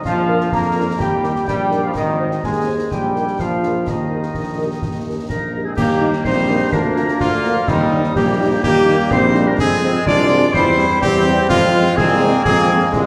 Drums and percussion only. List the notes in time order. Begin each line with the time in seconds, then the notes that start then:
0.05 concert bass drum, snare
0.41 snare
0.52 concert bass drum, snare
1.00 concert bass drum, snare
1.24 snare
1.36 snare
1.48 concert bass drum, snare
1.72 snare
1.95 concert bass drum, snare, crash
2.31 snare
2.44 concert bass drum, snare
2.92 concert bass drum, snare
3.16 snare
3.28 snare
3.39 concert bass drum, snare
3.63 snare
3.87 concert bass drum, snare
4.23 snare
4.35 concert bass drum, snare
4.82 concert bass drum, snare
5.30 concert bass drum, snare
5.78 concert bass drum, snare, crash
6.13 snare
6.25 concert bass drum, snare
6.72 concert bass drum, snare
6.97 snare
7.08 snare
7.21 concert bass drum, snare
7.44 snare
7.68 concert bass drum, snare, crash
8.04 snare
8.16 concert bass drum, snare
8.64 concert bass drum, snare
8.88 snare
8.99 snare
9.11 concert bass drum, snare
9.35 snare
9.59 concert bass drum, snare, crash
9.94 snare
10.06 concert bass drum, snare
10.54 concert bass drum, snare
10.78 snare
10.90 snare
11.02 concert bass drum, snare
11.26 snare
11.50 concert bass drum, snare, crash
11.86 snare
11.98 concert bass drum, snare
12.45 concert bass drum, snare
12.93 concert bass drum, snare